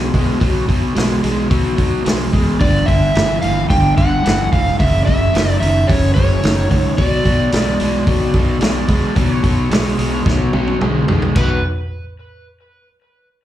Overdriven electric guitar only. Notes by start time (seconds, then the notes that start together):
Already playing: B2 G#3
0.14 B2 G#3
0.40 B2 F#3
0.68 B2 F#3
0.95 B2 G#3
1.23 B2 G#3
1.50 B2 F#3
1.76 B2 F#3
2.04 B2 G#3
2.32 B2 G#3
2.60 G2 D3
2.87 G2 D3
3.15 G2 E3
3.43 G2 E3
3.70 G2 D3
3.97 G2 D3
4.24 G2 E3
4.52 G2 E3
4.79 F#2 C#3
5.05 F#2 C#3
5.33 F#2 D#3
5.60 F#2 D#3
5.88 F#2 C#3
6.16 F#2 C#3
6.43 F#2 D#3
6.70 F#2 D#3
6.97 B2 F#3
7.25 B2 F#3
7.52 B2 G#3
7.80 B2 G#3
8.06 B2 F#3
8.34 B2 F#3
8.61 B2 G#3
8.88 B2 G#3
9.15 B2 F#3
9.43 B2 F#3
9.70 B2 G#3
9.98 B2 G#3
10.26 B2 F#3
10.53 B2 F#3
10.81 B2 G#3
11.08 B2 G#3
11.35 B2 F#3 B3